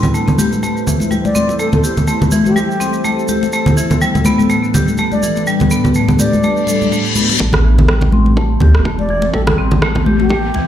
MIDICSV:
0, 0, Header, 1, 8, 480
1, 0, Start_track
1, 0, Key_signature, 0, "minor"
1, 0, Tempo, 483871
1, 1585, Time_signature, 4, 2, 24, 8
1, 10588, End_track
2, 0, Start_track
2, 0, Title_t, "Bansuri"
2, 0, Program_c, 0, 73
2, 1239, Note_on_c, 0, 74, 86
2, 1563, Note_off_c, 0, 74, 0
2, 1581, Note_on_c, 0, 69, 81
2, 1670, Note_off_c, 0, 69, 0
2, 1723, Note_on_c, 0, 69, 70
2, 1789, Note_off_c, 0, 69, 0
2, 2442, Note_on_c, 0, 67, 93
2, 3107, Note_off_c, 0, 67, 0
2, 5077, Note_on_c, 0, 74, 90
2, 5402, Note_off_c, 0, 74, 0
2, 6139, Note_on_c, 0, 74, 88
2, 6821, Note_off_c, 0, 74, 0
2, 8918, Note_on_c, 0, 74, 88
2, 9243, Note_off_c, 0, 74, 0
2, 9252, Note_on_c, 0, 69, 83
2, 9346, Note_off_c, 0, 69, 0
2, 9398, Note_on_c, 0, 69, 73
2, 9466, Note_off_c, 0, 69, 0
2, 10118, Note_on_c, 0, 67, 98
2, 10588, Note_off_c, 0, 67, 0
2, 10588, End_track
3, 0, Start_track
3, 0, Title_t, "Ambient pad"
3, 0, Program_c, 1, 92
3, 0, Note_on_c, 1, 57, 81
3, 0, Note_on_c, 1, 64, 72
3, 0, Note_on_c, 1, 71, 70
3, 0, Note_on_c, 1, 72, 88
3, 1546, Note_off_c, 1, 71, 0
3, 1574, Note_on_c, 1, 69, 74
3, 3467, Note_off_c, 1, 57, 0
3, 3467, Note_off_c, 1, 72, 0
3, 3468, Note_off_c, 1, 64, 0
3, 3501, Note_on_c, 1, 45, 77
3, 3501, Note_on_c, 1, 62, 75
3, 3502, Note_on_c, 1, 71, 86
3, 3503, Note_on_c, 1, 55, 74
3, 5381, Note_off_c, 1, 69, 0
3, 5418, Note_on_c, 1, 67, 73
3, 7305, Note_off_c, 1, 45, 0
3, 7305, Note_off_c, 1, 62, 0
3, 7305, Note_off_c, 1, 71, 0
3, 7306, Note_off_c, 1, 55, 0
3, 7322, Note_off_c, 1, 67, 0
3, 7335, Note_on_c, 1, 67, 87
3, 7336, Note_on_c, 1, 57, 77
3, 7337, Note_on_c, 1, 60, 72
3, 10588, Note_off_c, 1, 57, 0
3, 10588, Note_off_c, 1, 60, 0
3, 10588, Note_off_c, 1, 67, 0
3, 10588, End_track
4, 0, Start_track
4, 0, Title_t, "Marimba"
4, 0, Program_c, 2, 12
4, 144, Note_on_c, 2, 57, 92
4, 268, Note_off_c, 2, 57, 0
4, 383, Note_on_c, 2, 67, 70
4, 507, Note_off_c, 2, 67, 0
4, 625, Note_on_c, 2, 57, 91
4, 699, Note_off_c, 2, 57, 0
4, 862, Note_on_c, 2, 52, 68
4, 938, Note_off_c, 2, 52, 0
4, 1100, Note_on_c, 2, 55, 89
4, 1232, Note_off_c, 2, 55, 0
4, 1340, Note_on_c, 2, 60, 91
4, 1416, Note_off_c, 2, 60, 0
4, 1582, Note_on_c, 2, 57, 90
4, 1706, Note_off_c, 2, 57, 0
4, 1821, Note_on_c, 2, 67, 68
4, 1946, Note_off_c, 2, 67, 0
4, 2061, Note_on_c, 2, 57, 96
4, 2137, Note_off_c, 2, 57, 0
4, 2301, Note_on_c, 2, 52, 71
4, 2377, Note_off_c, 2, 52, 0
4, 2539, Note_on_c, 2, 55, 94
4, 2672, Note_off_c, 2, 55, 0
4, 2778, Note_on_c, 2, 60, 91
4, 2856, Note_off_c, 2, 60, 0
4, 3022, Note_on_c, 2, 57, 92
4, 3147, Note_off_c, 2, 57, 0
4, 3263, Note_on_c, 2, 67, 69
4, 3387, Note_off_c, 2, 67, 0
4, 3504, Note_on_c, 2, 57, 90
4, 3578, Note_off_c, 2, 57, 0
4, 3743, Note_on_c, 2, 52, 72
4, 3818, Note_off_c, 2, 52, 0
4, 3982, Note_on_c, 2, 55, 99
4, 4113, Note_off_c, 2, 55, 0
4, 4223, Note_on_c, 2, 59, 91
4, 4298, Note_off_c, 2, 59, 0
4, 4461, Note_on_c, 2, 57, 90
4, 4586, Note_off_c, 2, 57, 0
4, 4707, Note_on_c, 2, 67, 71
4, 4829, Note_off_c, 2, 67, 0
4, 4947, Note_on_c, 2, 57, 92
4, 5020, Note_off_c, 2, 57, 0
4, 5187, Note_on_c, 2, 52, 72
4, 5260, Note_off_c, 2, 52, 0
4, 5427, Note_on_c, 2, 55, 94
4, 5556, Note_off_c, 2, 55, 0
4, 5667, Note_on_c, 2, 59, 97
4, 5740, Note_off_c, 2, 59, 0
4, 5910, Note_on_c, 2, 57, 97
4, 6030, Note_off_c, 2, 57, 0
4, 6149, Note_on_c, 2, 67, 70
4, 6270, Note_off_c, 2, 67, 0
4, 6388, Note_on_c, 2, 57, 94
4, 6460, Note_off_c, 2, 57, 0
4, 6628, Note_on_c, 2, 69, 69
4, 6701, Note_off_c, 2, 69, 0
4, 6869, Note_on_c, 2, 57, 76
4, 6990, Note_off_c, 2, 57, 0
4, 7106, Note_on_c, 2, 59, 70
4, 7180, Note_off_c, 2, 59, 0
4, 7345, Note_on_c, 2, 57, 93
4, 7419, Note_off_c, 2, 57, 0
4, 7583, Note_on_c, 2, 52, 73
4, 7658, Note_off_c, 2, 52, 0
4, 7827, Note_on_c, 2, 55, 98
4, 7956, Note_off_c, 2, 55, 0
4, 8065, Note_on_c, 2, 60, 92
4, 8139, Note_off_c, 2, 60, 0
4, 8307, Note_on_c, 2, 57, 99
4, 8429, Note_off_c, 2, 57, 0
4, 8549, Note_on_c, 2, 67, 73
4, 8670, Note_off_c, 2, 67, 0
4, 8788, Note_on_c, 2, 57, 94
4, 8860, Note_off_c, 2, 57, 0
4, 9028, Note_on_c, 2, 52, 74
4, 9100, Note_off_c, 2, 52, 0
4, 9263, Note_on_c, 2, 55, 99
4, 9394, Note_off_c, 2, 55, 0
4, 9503, Note_on_c, 2, 60, 96
4, 9578, Note_off_c, 2, 60, 0
4, 9744, Note_on_c, 2, 57, 102
4, 9868, Note_off_c, 2, 57, 0
4, 9985, Note_on_c, 2, 67, 75
4, 10108, Note_off_c, 2, 67, 0
4, 10225, Note_on_c, 2, 57, 102
4, 10299, Note_off_c, 2, 57, 0
4, 10466, Note_on_c, 2, 52, 73
4, 10540, Note_off_c, 2, 52, 0
4, 10588, End_track
5, 0, Start_track
5, 0, Title_t, "Sub bass"
5, 0, Program_c, 3, 38
5, 7342, Note_on_c, 3, 33, 98
5, 8496, Note_off_c, 3, 33, 0
5, 8545, Note_on_c, 3, 38, 98
5, 8681, Note_on_c, 3, 28, 92
5, 8696, Note_off_c, 3, 38, 0
5, 9217, Note_off_c, 3, 28, 0
5, 9263, Note_on_c, 3, 33, 99
5, 9444, Note_off_c, 3, 33, 0
5, 9504, Note_on_c, 3, 33, 79
5, 10417, Note_off_c, 3, 33, 0
5, 10465, Note_on_c, 3, 36, 97
5, 10588, Note_off_c, 3, 36, 0
5, 10588, End_track
6, 0, Start_track
6, 0, Title_t, "Reverse cymbal"
6, 0, Program_c, 4, 119
6, 6382, Note_on_c, 4, 60, 69
6, 7344, Note_off_c, 4, 60, 0
6, 10588, End_track
7, 0, Start_track
7, 0, Title_t, "Riser"
7, 0, Program_c, 5, 103
7, 7341, Note_on_c, 5, 60, 76
7, 10588, Note_off_c, 5, 60, 0
7, 10588, End_track
8, 0, Start_track
8, 0, Title_t, "Drums"
8, 32, Note_on_c, 9, 62, 35
8, 33, Note_on_c, 9, 64, 85
8, 38, Note_on_c, 9, 82, 35
8, 132, Note_off_c, 9, 62, 0
8, 132, Note_off_c, 9, 64, 0
8, 137, Note_off_c, 9, 82, 0
8, 144, Note_on_c, 9, 82, 51
8, 244, Note_off_c, 9, 82, 0
8, 272, Note_on_c, 9, 62, 42
8, 279, Note_on_c, 9, 64, 77
8, 282, Note_on_c, 9, 82, 25
8, 372, Note_off_c, 9, 62, 0
8, 378, Note_off_c, 9, 64, 0
8, 381, Note_on_c, 9, 63, 89
8, 382, Note_off_c, 9, 82, 0
8, 385, Note_on_c, 9, 82, 89
8, 480, Note_off_c, 9, 63, 0
8, 485, Note_off_c, 9, 82, 0
8, 521, Note_on_c, 9, 82, 35
8, 522, Note_on_c, 9, 63, 59
8, 620, Note_off_c, 9, 82, 0
8, 621, Note_off_c, 9, 63, 0
8, 626, Note_on_c, 9, 82, 46
8, 632, Note_on_c, 9, 62, 31
8, 725, Note_off_c, 9, 82, 0
8, 731, Note_off_c, 9, 62, 0
8, 765, Note_on_c, 9, 82, 24
8, 864, Note_off_c, 9, 82, 0
8, 865, Note_on_c, 9, 64, 77
8, 868, Note_on_c, 9, 82, 81
8, 870, Note_on_c, 9, 62, 45
8, 964, Note_off_c, 9, 64, 0
8, 967, Note_off_c, 9, 82, 0
8, 969, Note_off_c, 9, 62, 0
8, 993, Note_on_c, 9, 63, 54
8, 1004, Note_on_c, 9, 82, 38
8, 1092, Note_off_c, 9, 63, 0
8, 1099, Note_on_c, 9, 63, 60
8, 1103, Note_off_c, 9, 82, 0
8, 1106, Note_on_c, 9, 82, 45
8, 1111, Note_on_c, 9, 62, 37
8, 1199, Note_off_c, 9, 63, 0
8, 1206, Note_off_c, 9, 82, 0
8, 1210, Note_off_c, 9, 62, 0
8, 1240, Note_on_c, 9, 63, 66
8, 1240, Note_on_c, 9, 82, 26
8, 1339, Note_off_c, 9, 63, 0
8, 1339, Note_off_c, 9, 82, 0
8, 1341, Note_on_c, 9, 82, 82
8, 1347, Note_on_c, 9, 63, 56
8, 1440, Note_off_c, 9, 82, 0
8, 1446, Note_off_c, 9, 63, 0
8, 1478, Note_on_c, 9, 62, 46
8, 1485, Note_on_c, 9, 82, 36
8, 1578, Note_off_c, 9, 62, 0
8, 1580, Note_off_c, 9, 82, 0
8, 1580, Note_on_c, 9, 82, 46
8, 1679, Note_off_c, 9, 82, 0
8, 1711, Note_on_c, 9, 82, 24
8, 1715, Note_on_c, 9, 62, 53
8, 1716, Note_on_c, 9, 64, 87
8, 1810, Note_off_c, 9, 82, 0
8, 1815, Note_off_c, 9, 62, 0
8, 1815, Note_off_c, 9, 64, 0
8, 1825, Note_on_c, 9, 82, 77
8, 1925, Note_off_c, 9, 82, 0
8, 1955, Note_on_c, 9, 82, 35
8, 1957, Note_on_c, 9, 62, 34
8, 1958, Note_on_c, 9, 64, 84
8, 2054, Note_off_c, 9, 82, 0
8, 2056, Note_off_c, 9, 62, 0
8, 2057, Note_off_c, 9, 64, 0
8, 2058, Note_on_c, 9, 82, 51
8, 2157, Note_off_c, 9, 82, 0
8, 2199, Note_on_c, 9, 64, 82
8, 2201, Note_on_c, 9, 62, 48
8, 2203, Note_on_c, 9, 82, 23
8, 2295, Note_off_c, 9, 82, 0
8, 2295, Note_on_c, 9, 82, 79
8, 2298, Note_off_c, 9, 64, 0
8, 2300, Note_off_c, 9, 62, 0
8, 2303, Note_on_c, 9, 63, 74
8, 2394, Note_off_c, 9, 82, 0
8, 2402, Note_off_c, 9, 63, 0
8, 2440, Note_on_c, 9, 82, 36
8, 2443, Note_on_c, 9, 63, 60
8, 2539, Note_off_c, 9, 82, 0
8, 2541, Note_on_c, 9, 62, 37
8, 2542, Note_off_c, 9, 63, 0
8, 2548, Note_on_c, 9, 82, 46
8, 2640, Note_off_c, 9, 62, 0
8, 2647, Note_off_c, 9, 82, 0
8, 2690, Note_on_c, 9, 82, 22
8, 2786, Note_off_c, 9, 82, 0
8, 2786, Note_on_c, 9, 62, 44
8, 2786, Note_on_c, 9, 82, 73
8, 2885, Note_off_c, 9, 82, 0
8, 2886, Note_off_c, 9, 62, 0
8, 2909, Note_on_c, 9, 82, 34
8, 3008, Note_off_c, 9, 82, 0
8, 3020, Note_on_c, 9, 82, 44
8, 3026, Note_on_c, 9, 62, 38
8, 3120, Note_off_c, 9, 82, 0
8, 3125, Note_off_c, 9, 62, 0
8, 3165, Note_on_c, 9, 82, 21
8, 3255, Note_off_c, 9, 82, 0
8, 3255, Note_on_c, 9, 82, 79
8, 3262, Note_on_c, 9, 63, 51
8, 3354, Note_off_c, 9, 82, 0
8, 3361, Note_off_c, 9, 63, 0
8, 3401, Note_on_c, 9, 62, 51
8, 3408, Note_on_c, 9, 82, 35
8, 3496, Note_off_c, 9, 82, 0
8, 3496, Note_on_c, 9, 82, 45
8, 3501, Note_off_c, 9, 62, 0
8, 3595, Note_off_c, 9, 82, 0
8, 3632, Note_on_c, 9, 64, 96
8, 3642, Note_on_c, 9, 82, 24
8, 3646, Note_on_c, 9, 62, 52
8, 3732, Note_off_c, 9, 64, 0
8, 3741, Note_off_c, 9, 82, 0
8, 3743, Note_on_c, 9, 82, 77
8, 3745, Note_off_c, 9, 62, 0
8, 3843, Note_off_c, 9, 82, 0
8, 3874, Note_on_c, 9, 82, 31
8, 3876, Note_on_c, 9, 62, 38
8, 3877, Note_on_c, 9, 64, 93
8, 3973, Note_off_c, 9, 82, 0
8, 3975, Note_off_c, 9, 62, 0
8, 3976, Note_off_c, 9, 64, 0
8, 3983, Note_on_c, 9, 82, 45
8, 4082, Note_off_c, 9, 82, 0
8, 4119, Note_on_c, 9, 62, 48
8, 4119, Note_on_c, 9, 64, 73
8, 4124, Note_on_c, 9, 82, 24
8, 4214, Note_on_c, 9, 63, 82
8, 4216, Note_off_c, 9, 82, 0
8, 4216, Note_on_c, 9, 82, 81
8, 4218, Note_off_c, 9, 62, 0
8, 4218, Note_off_c, 9, 64, 0
8, 4313, Note_off_c, 9, 63, 0
8, 4316, Note_off_c, 9, 82, 0
8, 4357, Note_on_c, 9, 63, 59
8, 4363, Note_on_c, 9, 82, 39
8, 4456, Note_off_c, 9, 63, 0
8, 4461, Note_on_c, 9, 62, 36
8, 4462, Note_off_c, 9, 82, 0
8, 4464, Note_on_c, 9, 82, 42
8, 4560, Note_off_c, 9, 62, 0
8, 4563, Note_off_c, 9, 82, 0
8, 4602, Note_on_c, 9, 82, 21
8, 4701, Note_off_c, 9, 82, 0
8, 4703, Note_on_c, 9, 62, 50
8, 4708, Note_on_c, 9, 82, 78
8, 4709, Note_on_c, 9, 64, 87
8, 4802, Note_off_c, 9, 62, 0
8, 4807, Note_off_c, 9, 82, 0
8, 4808, Note_off_c, 9, 64, 0
8, 4841, Note_on_c, 9, 82, 34
8, 4844, Note_on_c, 9, 63, 54
8, 4935, Note_off_c, 9, 63, 0
8, 4935, Note_off_c, 9, 82, 0
8, 4935, Note_on_c, 9, 63, 53
8, 4935, Note_on_c, 9, 82, 42
8, 4944, Note_on_c, 9, 62, 36
8, 5034, Note_off_c, 9, 82, 0
8, 5035, Note_off_c, 9, 63, 0
8, 5043, Note_off_c, 9, 62, 0
8, 5075, Note_on_c, 9, 63, 61
8, 5078, Note_on_c, 9, 82, 21
8, 5175, Note_off_c, 9, 63, 0
8, 5177, Note_off_c, 9, 82, 0
8, 5186, Note_on_c, 9, 82, 76
8, 5189, Note_on_c, 9, 63, 55
8, 5286, Note_off_c, 9, 82, 0
8, 5288, Note_off_c, 9, 63, 0
8, 5318, Note_on_c, 9, 82, 33
8, 5330, Note_on_c, 9, 62, 50
8, 5417, Note_off_c, 9, 82, 0
8, 5423, Note_on_c, 9, 82, 46
8, 5429, Note_off_c, 9, 62, 0
8, 5522, Note_off_c, 9, 82, 0
8, 5556, Note_on_c, 9, 62, 46
8, 5556, Note_on_c, 9, 82, 24
8, 5566, Note_on_c, 9, 64, 91
8, 5655, Note_off_c, 9, 62, 0
8, 5655, Note_off_c, 9, 82, 0
8, 5660, Note_on_c, 9, 82, 86
8, 5666, Note_off_c, 9, 64, 0
8, 5759, Note_off_c, 9, 82, 0
8, 5800, Note_on_c, 9, 62, 39
8, 5800, Note_on_c, 9, 64, 92
8, 5809, Note_on_c, 9, 82, 34
8, 5896, Note_off_c, 9, 82, 0
8, 5896, Note_on_c, 9, 82, 49
8, 5899, Note_off_c, 9, 62, 0
8, 5899, Note_off_c, 9, 64, 0
8, 5996, Note_off_c, 9, 82, 0
8, 6036, Note_on_c, 9, 62, 46
8, 6037, Note_on_c, 9, 64, 89
8, 6044, Note_on_c, 9, 82, 22
8, 6136, Note_off_c, 9, 62, 0
8, 6136, Note_off_c, 9, 64, 0
8, 6139, Note_on_c, 9, 63, 80
8, 6143, Note_off_c, 9, 82, 0
8, 6144, Note_on_c, 9, 82, 91
8, 6238, Note_off_c, 9, 63, 0
8, 6243, Note_off_c, 9, 82, 0
8, 6282, Note_on_c, 9, 82, 34
8, 6283, Note_on_c, 9, 63, 61
8, 6381, Note_off_c, 9, 82, 0
8, 6382, Note_off_c, 9, 63, 0
8, 6382, Note_on_c, 9, 82, 42
8, 6386, Note_on_c, 9, 62, 36
8, 6481, Note_off_c, 9, 82, 0
8, 6485, Note_off_c, 9, 62, 0
8, 6515, Note_on_c, 9, 82, 21
8, 6614, Note_off_c, 9, 82, 0
8, 6617, Note_on_c, 9, 62, 48
8, 6628, Note_on_c, 9, 82, 86
8, 6716, Note_off_c, 9, 62, 0
8, 6727, Note_off_c, 9, 82, 0
8, 6760, Note_on_c, 9, 82, 36
8, 6762, Note_on_c, 9, 63, 54
8, 6859, Note_off_c, 9, 82, 0
8, 6862, Note_off_c, 9, 63, 0
8, 6864, Note_on_c, 9, 62, 38
8, 6872, Note_on_c, 9, 82, 47
8, 6963, Note_off_c, 9, 62, 0
8, 6971, Note_off_c, 9, 82, 0
8, 6995, Note_on_c, 9, 82, 22
8, 7094, Note_off_c, 9, 82, 0
8, 7097, Note_on_c, 9, 82, 79
8, 7098, Note_on_c, 9, 63, 60
8, 7196, Note_off_c, 9, 82, 0
8, 7197, Note_off_c, 9, 63, 0
8, 7236, Note_on_c, 9, 62, 57
8, 7246, Note_on_c, 9, 82, 33
8, 7336, Note_off_c, 9, 62, 0
8, 7341, Note_on_c, 9, 47, 47
8, 7343, Note_on_c, 9, 36, 108
8, 7345, Note_off_c, 9, 82, 0
8, 7440, Note_off_c, 9, 47, 0
8, 7442, Note_off_c, 9, 36, 0
8, 7467, Note_on_c, 9, 64, 99
8, 7468, Note_on_c, 9, 62, 49
8, 7477, Note_on_c, 9, 37, 86
8, 7566, Note_off_c, 9, 64, 0
8, 7568, Note_off_c, 9, 62, 0
8, 7577, Note_off_c, 9, 37, 0
8, 7723, Note_on_c, 9, 64, 99
8, 7724, Note_on_c, 9, 62, 39
8, 7822, Note_off_c, 9, 64, 0
8, 7822, Note_on_c, 9, 36, 114
8, 7822, Note_on_c, 9, 37, 91
8, 7822, Note_on_c, 9, 47, 49
8, 7823, Note_off_c, 9, 62, 0
8, 7921, Note_off_c, 9, 36, 0
8, 7921, Note_off_c, 9, 37, 0
8, 7921, Note_off_c, 9, 47, 0
8, 7948, Note_on_c, 9, 64, 81
8, 7953, Note_on_c, 9, 62, 54
8, 7959, Note_on_c, 9, 36, 78
8, 8047, Note_off_c, 9, 64, 0
8, 8053, Note_off_c, 9, 62, 0
8, 8058, Note_off_c, 9, 36, 0
8, 8058, Note_on_c, 9, 63, 78
8, 8158, Note_off_c, 9, 63, 0
8, 8194, Note_on_c, 9, 63, 60
8, 8293, Note_off_c, 9, 63, 0
8, 8302, Note_on_c, 9, 36, 113
8, 8302, Note_on_c, 9, 47, 52
8, 8304, Note_on_c, 9, 62, 36
8, 8401, Note_off_c, 9, 36, 0
8, 8401, Note_off_c, 9, 47, 0
8, 8403, Note_off_c, 9, 62, 0
8, 8535, Note_on_c, 9, 64, 95
8, 8544, Note_on_c, 9, 62, 50
8, 8634, Note_off_c, 9, 64, 0
8, 8644, Note_off_c, 9, 62, 0
8, 8677, Note_on_c, 9, 37, 90
8, 8776, Note_off_c, 9, 37, 0
8, 8779, Note_on_c, 9, 47, 53
8, 8782, Note_on_c, 9, 36, 114
8, 8785, Note_on_c, 9, 63, 59
8, 8787, Note_on_c, 9, 62, 36
8, 8878, Note_off_c, 9, 47, 0
8, 8881, Note_off_c, 9, 36, 0
8, 8884, Note_off_c, 9, 63, 0
8, 8886, Note_off_c, 9, 62, 0
8, 8914, Note_on_c, 9, 63, 62
8, 9013, Note_off_c, 9, 63, 0
8, 9015, Note_on_c, 9, 63, 56
8, 9114, Note_off_c, 9, 63, 0
8, 9147, Note_on_c, 9, 62, 57
8, 9246, Note_off_c, 9, 62, 0
8, 9261, Note_on_c, 9, 36, 119
8, 9263, Note_on_c, 9, 47, 57
8, 9360, Note_off_c, 9, 36, 0
8, 9362, Note_off_c, 9, 47, 0
8, 9394, Note_on_c, 9, 62, 53
8, 9397, Note_on_c, 9, 37, 89
8, 9397, Note_on_c, 9, 64, 102
8, 9494, Note_off_c, 9, 62, 0
8, 9496, Note_off_c, 9, 64, 0
8, 9497, Note_off_c, 9, 37, 0
8, 9634, Note_on_c, 9, 62, 36
8, 9638, Note_on_c, 9, 64, 107
8, 9733, Note_off_c, 9, 62, 0
8, 9737, Note_off_c, 9, 64, 0
8, 9742, Note_on_c, 9, 36, 120
8, 9742, Note_on_c, 9, 37, 95
8, 9742, Note_on_c, 9, 47, 63
8, 9841, Note_off_c, 9, 36, 0
8, 9841, Note_off_c, 9, 37, 0
8, 9841, Note_off_c, 9, 47, 0
8, 9873, Note_on_c, 9, 64, 89
8, 9874, Note_on_c, 9, 62, 45
8, 9878, Note_on_c, 9, 36, 86
8, 9972, Note_off_c, 9, 64, 0
8, 9974, Note_off_c, 9, 62, 0
8, 9977, Note_off_c, 9, 36, 0
8, 9982, Note_on_c, 9, 63, 89
8, 10081, Note_off_c, 9, 63, 0
8, 10114, Note_on_c, 9, 63, 68
8, 10213, Note_on_c, 9, 62, 41
8, 10214, Note_off_c, 9, 63, 0
8, 10222, Note_on_c, 9, 36, 120
8, 10222, Note_on_c, 9, 47, 64
8, 10312, Note_off_c, 9, 62, 0
8, 10321, Note_off_c, 9, 36, 0
8, 10321, Note_off_c, 9, 47, 0
8, 10458, Note_on_c, 9, 62, 52
8, 10557, Note_off_c, 9, 62, 0
8, 10588, End_track
0, 0, End_of_file